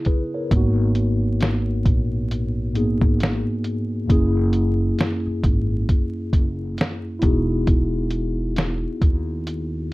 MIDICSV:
0, 0, Header, 1, 5, 480
1, 0, Start_track
1, 0, Key_signature, 5, "minor"
1, 0, Tempo, 895522
1, 274, Time_signature, 4, 2, 24, 8
1, 5324, End_track
2, 0, Start_track
2, 0, Title_t, "Tine electric piano"
2, 0, Program_c, 0, 4
2, 0, Control_c, 0, 64, 127
2, 0, Note_on_c, 0, 49, 69
2, 0, Note_on_c, 0, 59, 67
2, 0, Note_on_c, 0, 64, 52
2, 0, Note_on_c, 0, 68, 54
2, 39, Note_on_c, 0, 71, 61
2, 40, Note_off_c, 0, 68, 0
2, 40, Note_on_c, 0, 68, 50
2, 170, Note_off_c, 0, 68, 0
2, 170, Note_off_c, 0, 71, 0
2, 184, Note_on_c, 0, 73, 56
2, 187, Note_on_c, 0, 70, 46
2, 246, Note_off_c, 0, 49, 0
2, 250, Note_off_c, 0, 59, 0
2, 270, Note_on_c, 0, 44, 71
2, 280, Note_on_c, 0, 58, 65
2, 282, Control_c, 0, 64, 0
2, 284, Note_off_c, 0, 64, 0
2, 287, Note_on_c, 0, 59, 70
2, 297, Note_on_c, 0, 63, 68
2, 304, Note_on_c, 0, 66, 85
2, 372, Control_c, 0, 64, 127
2, 407, Note_off_c, 0, 73, 0
2, 409, Note_off_c, 0, 70, 0
2, 1451, Note_off_c, 0, 44, 0
2, 1456, Note_off_c, 0, 58, 0
2, 1459, Note_off_c, 0, 59, 0
2, 1464, Note_off_c, 0, 63, 0
2, 1468, Note_off_c, 0, 66, 0
2, 1468, Note_on_c, 0, 44, 50
2, 1472, Note_on_c, 0, 58, 54
2, 1478, Note_on_c, 0, 59, 48
2, 1481, Note_on_c, 0, 63, 48
2, 1485, Note_on_c, 0, 68, 62
2, 2175, Note_on_c, 0, 42, 76
2, 2177, Note_off_c, 0, 58, 0
2, 2183, Note_on_c, 0, 58, 60
2, 2191, Note_off_c, 0, 44, 0
2, 2192, Note_on_c, 0, 61, 67
2, 2196, Note_off_c, 0, 59, 0
2, 2198, Note_off_c, 0, 63, 0
2, 2199, Note_on_c, 0, 64, 71
2, 2200, Note_off_c, 0, 68, 0
2, 2201, Control_c, 0, 64, 0
2, 2208, Note_on_c, 0, 68, 85
2, 2305, Control_c, 0, 64, 127
2, 3843, Note_off_c, 0, 42, 0
2, 3847, Note_off_c, 0, 58, 0
2, 3849, Note_off_c, 0, 64, 0
2, 3852, Note_off_c, 0, 61, 0
2, 3856, Note_on_c, 0, 64, 70
2, 3860, Note_off_c, 0, 68, 0
2, 3865, Note_on_c, 0, 59, 64
2, 3872, Note_on_c, 0, 63, 66
2, 3880, Note_on_c, 0, 66, 67
2, 3881, Control_c, 0, 64, 0
2, 3889, Note_on_c, 0, 68, 73
2, 3971, Control_c, 0, 64, 127
2, 5324, Note_off_c, 0, 59, 0
2, 5324, Note_off_c, 0, 63, 0
2, 5324, Note_off_c, 0, 64, 0
2, 5324, Note_off_c, 0, 66, 0
2, 5324, Note_off_c, 0, 68, 0
2, 5324, End_track
3, 0, Start_track
3, 0, Title_t, "Upright bass"
3, 0, Program_c, 1, 32
3, 277, Note_on_c, 1, 32, 104
3, 974, Note_off_c, 1, 32, 0
3, 997, Note_on_c, 1, 34, 84
3, 1594, Note_off_c, 1, 34, 0
3, 1619, Note_on_c, 1, 32, 83
3, 1832, Note_off_c, 1, 32, 0
3, 2198, Note_on_c, 1, 30, 98
3, 2627, Note_off_c, 1, 30, 0
3, 2916, Note_on_c, 1, 32, 91
3, 3131, Note_off_c, 1, 32, 0
3, 3395, Note_on_c, 1, 30, 82
3, 3610, Note_off_c, 1, 30, 0
3, 3876, Note_on_c, 1, 28, 95
3, 4737, Note_off_c, 1, 28, 0
3, 4834, Note_on_c, 1, 39, 90
3, 5324, Note_off_c, 1, 39, 0
3, 5324, End_track
4, 0, Start_track
4, 0, Title_t, "Muted upright bass strokes"
4, 2820, Note_on_c, 9, 29, 52
4, 2873, Note_off_c, 9, 29, 0
4, 5324, End_track
5, 0, Start_track
5, 0, Title_t, "Drums"
5, 26, Note_on_c, 9, 42, 68
5, 33, Note_on_c, 9, 36, 71
5, 80, Note_off_c, 9, 42, 0
5, 87, Note_off_c, 9, 36, 0
5, 274, Note_on_c, 9, 36, 113
5, 274, Note_on_c, 9, 42, 79
5, 328, Note_off_c, 9, 36, 0
5, 328, Note_off_c, 9, 42, 0
5, 509, Note_on_c, 9, 42, 63
5, 563, Note_off_c, 9, 42, 0
5, 754, Note_on_c, 9, 42, 73
5, 764, Note_on_c, 9, 38, 121
5, 807, Note_off_c, 9, 42, 0
5, 818, Note_off_c, 9, 38, 0
5, 994, Note_on_c, 9, 36, 90
5, 995, Note_on_c, 9, 42, 60
5, 1048, Note_off_c, 9, 36, 0
5, 1048, Note_off_c, 9, 42, 0
5, 1239, Note_on_c, 9, 42, 72
5, 1293, Note_off_c, 9, 42, 0
5, 1476, Note_on_c, 9, 42, 60
5, 1530, Note_off_c, 9, 42, 0
5, 1616, Note_on_c, 9, 36, 98
5, 1670, Note_off_c, 9, 36, 0
5, 1717, Note_on_c, 9, 42, 68
5, 1733, Note_on_c, 9, 38, 102
5, 1771, Note_off_c, 9, 42, 0
5, 1787, Note_off_c, 9, 38, 0
5, 1952, Note_on_c, 9, 42, 71
5, 2006, Note_off_c, 9, 42, 0
5, 2195, Note_on_c, 9, 36, 110
5, 2197, Note_on_c, 9, 42, 80
5, 2249, Note_off_c, 9, 36, 0
5, 2250, Note_off_c, 9, 42, 0
5, 2427, Note_on_c, 9, 42, 66
5, 2481, Note_off_c, 9, 42, 0
5, 2673, Note_on_c, 9, 42, 77
5, 2683, Note_on_c, 9, 38, 115
5, 2726, Note_off_c, 9, 42, 0
5, 2737, Note_off_c, 9, 38, 0
5, 2913, Note_on_c, 9, 36, 86
5, 2914, Note_on_c, 9, 42, 60
5, 2967, Note_off_c, 9, 36, 0
5, 2968, Note_off_c, 9, 42, 0
5, 3157, Note_on_c, 9, 36, 94
5, 3157, Note_on_c, 9, 42, 78
5, 3210, Note_off_c, 9, 36, 0
5, 3210, Note_off_c, 9, 42, 0
5, 3392, Note_on_c, 9, 36, 82
5, 3394, Note_on_c, 9, 42, 58
5, 3446, Note_off_c, 9, 36, 0
5, 3448, Note_off_c, 9, 42, 0
5, 3634, Note_on_c, 9, 42, 78
5, 3650, Note_on_c, 9, 38, 106
5, 3688, Note_off_c, 9, 42, 0
5, 3704, Note_off_c, 9, 38, 0
5, 3869, Note_on_c, 9, 42, 75
5, 3874, Note_on_c, 9, 36, 81
5, 3922, Note_off_c, 9, 42, 0
5, 3927, Note_off_c, 9, 36, 0
5, 4112, Note_on_c, 9, 42, 76
5, 4113, Note_on_c, 9, 36, 112
5, 4165, Note_off_c, 9, 42, 0
5, 4167, Note_off_c, 9, 36, 0
5, 4344, Note_on_c, 9, 42, 67
5, 4398, Note_off_c, 9, 42, 0
5, 4590, Note_on_c, 9, 42, 70
5, 4601, Note_on_c, 9, 38, 121
5, 4644, Note_off_c, 9, 42, 0
5, 4654, Note_off_c, 9, 38, 0
5, 4832, Note_on_c, 9, 36, 94
5, 4833, Note_on_c, 9, 42, 62
5, 4886, Note_off_c, 9, 36, 0
5, 4886, Note_off_c, 9, 42, 0
5, 5075, Note_on_c, 9, 42, 80
5, 5129, Note_off_c, 9, 42, 0
5, 5324, End_track
0, 0, End_of_file